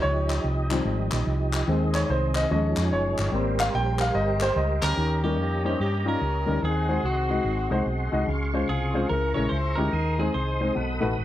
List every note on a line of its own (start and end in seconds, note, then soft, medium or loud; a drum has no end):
0.00 0.39 C#2 loud
0.00 1.66 D#4 medium
0.00 0.41 C#5 loud
0.00 2.47 D#5 medium
0.04 1.67 F3 medium
0.04 1.67 G4 medium
0.30 clap medium
0.44 0.79 C2 medium
0.70 1.24 D#3 medium
0.70 1.24 F3 soft
0.70 1.24 G3 soft
0.70 1.24 C4 medium
0.70 clap medium
0.85 1.08 G#1 medium
1.12 1.25 A#1 medium
1.12 clap loud
1.27 1.62 C2 medium
1.53 clap medium
1.67 2.03 D#2 medium
1.67 2.46 D#3 medium
1.67 2.50 D#3 medium
1.67 2.46 G#3 medium
1.67 2.46 C4 medium
1.67 2.50 C4 medium
1.67 3.31 G#4 medium
1.95 2.00 C#5 medium
1.95 clap medium
2.06 2.44 C2 medium
2.06 2.09 C#5 medium
2.10 2.37 C5 medium
2.35 2.50 D#5 medium
2.35 clap medium
2.49 2.73 D#2 loud
2.49 3.14 F3 medium
2.49 3.33 F3 medium
2.49 3.15 G#3 medium
2.49 3.15 C#4 medium
2.49 3.32 D#4 medium
2.49 3.32 C#5 medium
2.49 2.93 D#5 medium
2.77 2.90 F2 loud
2.77 clap loud
2.92 3.15 F#1 medium
2.92 3.30 C#5 medium
3.19 3.31 G1 medium
3.19 clap medium
3.31 3.68 G#1 loud
3.31 3.96 G3 medium
3.31 4.97 G3 medium
3.31 3.97 A#3 medium
3.31 3.97 C4 medium
3.31 4.96 G4 medium
3.31 4.97 A#4 medium
3.31 4.97 C5 medium
3.60 3.65 F5 loud
3.60 clap loud
3.75 4.09 A#1 medium
3.75 4.02 G5 loud
3.99 4.16 F5 loud
3.99 clap medium
4.15 4.50 G1 medium
4.15 4.42 D#5 loud
4.41 4.57 C5 loud
4.41 clap loud
4.56 4.79 C#2 medium
4.56 4.95 D#5 medium
4.82 4.95 D2 medium
4.82 5.23 C#4 medium
4.82 5.24 G4 medium
4.82 5.21 A#4 loud
4.82 5.23 A#4 loud
4.82 clap loud
4.97 5.39 D#2 medium
4.97 5.61 D#3 medium
4.97 6.61 G4 medium
4.97 6.61 C#5 medium
4.97 8.25 D#5 medium
4.97 6.61 A#5 medium
5.24 5.34 G3 medium
5.24 5.79 A#3 medium
5.24 5.35 C#4 medium
5.24 5.78 C#4 medium
5.24 5.35 D#4 medium
5.24 5.62 G4 medium
5.24 5.79 G4 medium
5.24 5.35 A#4 medium
5.39 5.74 F2 medium
5.64 5.75 G3 medium
5.64 5.76 C#4 medium
5.64 5.76 D#4 medium
5.64 5.79 G4 medium
5.64 5.76 C5 medium
5.79 6.15 G2 medium
5.79 6.58 A#3 medium
5.79 6.05 C#4 medium
5.79 6.05 G4 medium
6.05 6.16 G3 medium
6.05 6.17 C#4 medium
6.05 6.58 C#4 medium
6.05 6.17 D#4 medium
6.05 6.17 F4 medium
6.05 6.58 G4 medium
6.05 6.63 A#4 medium
6.05 6.64 A#4 medium
6.21 6.44 C#2 medium
6.46 6.60 D2 medium
6.46 6.57 G3 medium
6.46 6.58 C#4 medium
6.46 6.58 D#4 medium
6.46 6.58 A#4 medium
6.62 6.98 D#2 medium
6.62 7.26 D#3 medium
6.62 7.03 C4 medium
6.62 10.72 G#4 medium
6.62 7.04 G#4 medium
6.62 7.06 G#4 medium
6.62 8.27 F#5 medium
6.62 9.08 C6 medium
6.88 6.99 G#3 medium
6.88 6.99 D#4 medium
6.88 6.99 F#4 medium
6.88 6.99 C5 medium
7.03 7.39 C2 medium
7.03 8.09 C4 medium
7.03 8.13 F#4 medium
7.03 8.10 F#4 medium
7.29 7.40 G#3 medium
7.29 7.41 D#4 medium
7.29 7.41 F#4 medium
7.29 7.41 D#5 medium
7.44 7.67 G#1 medium
7.44 8.09 G#2 medium
7.71 7.84 C2 medium
7.71 7.82 G#3 medium
7.71 7.82 D#4 medium
7.71 7.82 F#4 medium
7.71 7.82 C5 medium
7.86 8.09 B1 medium
8.12 8.25 C2 medium
8.12 8.23 G#3 medium
8.12 8.23 D#4 medium
8.12 8.23 F#4 medium
8.12 8.24 D#5 medium
8.27 8.63 C#2 medium
8.27 8.91 C#3 medium
8.27 9.10 F5 medium
8.27 9.92 C#6 medium
8.53 8.64 G#3 medium
8.53 8.65 C#4 medium
8.53 8.65 F4 medium
8.53 8.65 C5 medium
8.69 9.04 C2 medium
8.69 9.07 C4 medium
8.69 9.07 F4 medium
8.69 9.07 G#4 medium
8.69 9.08 G#4 medium
8.94 9.05 G#3 medium
8.94 9.05 C#4 medium
8.94 9.06 F4 medium
8.94 9.06 C5 medium
9.09 9.33 C#2 medium
9.09 9.74 C#3 medium
9.09 9.89 E4 medium
9.09 9.36 A#4 medium
9.09 9.34 A#4 medium
9.09 9.93 E5 medium
9.09 9.93 A#5 medium
9.34 9.50 A#1 medium
9.34 9.47 G#3 medium
9.34 9.47 C#4 medium
9.34 9.47 E4 medium
9.34 9.47 A#4 medium
9.34 9.49 C#5 medium
9.34 9.50 C#5 medium
9.49 9.74 C#2 medium
9.49 9.56 C5 medium
9.49 9.78 C5 medium
9.75 9.91 D2 medium
9.75 9.88 G#3 medium
9.75 9.88 C#4 medium
9.75 9.88 E4 medium
9.75 9.89 G4 medium
9.75 10.15 A#4 medium
9.75 10.20 A#4 medium
9.79 10.34 D#4 medium
9.92 10.28 D#2 loud
9.92 10.56 D#3 medium
9.92 10.75 D#5 medium
9.92 10.75 C6 soft
9.92 11.25 D#6 medium
10.19 10.30 G#3 medium
10.19 10.30 C4 medium
10.19 10.30 D#4 medium
10.19 10.33 G#4 medium
10.19 10.34 G#4 medium
10.19 10.30 C5 medium
10.34 10.70 C2 medium
10.34 10.73 D#4 medium
10.34 10.73 G#4 medium
10.34 10.73 C5 medium
10.34 10.76 C5 medium
10.61 10.71 G#3 medium
10.61 10.71 C4 medium
10.61 10.71 D#4 medium
10.61 10.72 C5 medium
10.75 10.98 B1 medium
10.75 11.25 B2 medium
10.75 11.25 A4 medium
10.75 11.25 F#5 medium
10.75 11.25 B5 medium
11.00 11.15 A1 medium
11.00 11.12 A3 medium
11.00 11.12 D#4 medium
11.00 11.12 F#4 medium
11.00 11.13 B4 medium
11.18 11.25 G#1 medium